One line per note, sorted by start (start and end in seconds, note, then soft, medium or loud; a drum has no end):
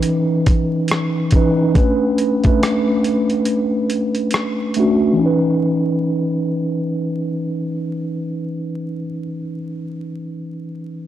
0.00 1.33 E3 medium
0.00 1.34 C#4 medium
0.00 1.35 D#4 medium
0.00 1.36 B4 medium
0.00 closed hi-hat medium
0.46 kick medium
0.46 closed hi-hat medium
0.88 cross-stick medium
0.88 closed hi-hat medium
1.31 1.65 E3 medium
1.31 1.65 C#4 medium
1.31 kick medium
1.31 closed hi-hat soft
1.35 1.66 D#4 medium
1.35 1.67 B4 medium
1.74 2.19 A3 medium
1.74 2.19 C#4 medium
1.74 2.20 D4 medium
1.74 2.20 B4 medium
1.74 kick loud
1.74 closed hi-hat medium
2.18 closed hi-hat medium
2.44 3.58 A3 medium
2.44 3.59 C#4 medium
2.44 3.59 D4 medium
2.44 3.60 B4 medium
2.44 kick medium
2.44 closed hi-hat soft
2.63 cross-stick loud
2.63 closed hi-hat medium
3.04 closed hi-hat medium
3.30 closed hi-hat soft
3.45 closed hi-hat medium
3.90 closed hi-hat medium
4.15 closed hi-hat soft
4.31 cross-stick medium
4.31 closed hi-hat medium
4.74 5.08 A3 medium
4.74 5.09 C#4 medium
4.74 closed hi-hat soft
4.79 5.09 D4 medium
4.79 5.10 F#4 medium
5.13 8.91 E3 medium
5.13 8.95 C#4 medium
5.21 9.00 D#4 medium
5.26 9.04 B4 medium